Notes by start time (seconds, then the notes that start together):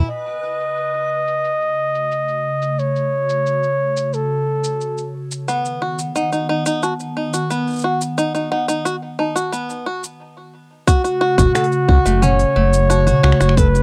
Already playing: B4 B5
0.09 C#3 A3 F#4 D#5, cabasa
0.26 cabasa
0.60 cabasa
0.77 cabasa
0.94 cabasa
1.27 cabasa
1.44 cabasa
1.61 cabasa
1.95 cabasa
2.11 cabasa
2.28 cabasa
2.62 cabasa
2.79 C#5, cabasa
2.96 cabasa
3.29 cabasa
3.46 cabasa
3.63 cabasa
3.97 cabasa
4.13 A4, cabasa
4.64 cabasa
4.81 cabasa
4.98 cabasa
5.31 cabasa
5.48 D#3 B3 F#5, cabasa
5.65 cabasa
5.82 F#4
5.99 cabasa
6.16 D#4 F#5, cabasa
6.32 D#4, cabasa
6.49 D#4
6.66 D#4, cabasa
6.83 F#4 A5, cabasa
7.00 cabasa
7.17 D#4
7.33 F#4, cabasa
7.50 B3, cabasa
7.67 cabasa
7.70 cabasa
7.73 cabasa
7.76 cabasa
7.79 cabasa
7.81 F#4 F#5, cabasa
8.01 cabasa
8.18 D#4, cabasa
8.35 D#4, cabasa
8.51 D#4 F#5
8.68 D#4, cabasa
8.85 F#4, cabasa
9.19 D#4 A5
9.36 F#4, cabasa
9.52 B3, cabasa
9.70 cabasa
9.86 F#4
10.04 cabasa
10.87 C#3 A3 F#4, kick, open hi-hat, cabasa
11.04 F#4, open hi-hat, cabasa
11.21 F#4
11.38 F#1 F#4, kick, mid tom, open hi-hat, cabasa
11.55 A4 F#5, finger snap, open hi-hat, cabasa
11.64 open hi-hat
11.72 cabasa
11.88 C#2 F#4, kick
12.06 F#1 A3, open hi-hat, cabasa
12.22 C#4 C#5 F#5, mid tom, open hi-hat, cabasa
12.39 open hi-hat, cabasa
12.56 F#1 A3
12.73 cabasa
12.90 F#4 A5, open hi-hat, cabasa
13.07 F#4, mid tom, open hi-hat, cabasa
13.23 C#2 F#4, finger snap
13.32 finger snap
13.40 F#1 F#4, finger snap, cabasa
13.49 finger snap
13.57 A4 B4, kick, open hi-hat, cabasa
13.75 open hi-hat, cabasa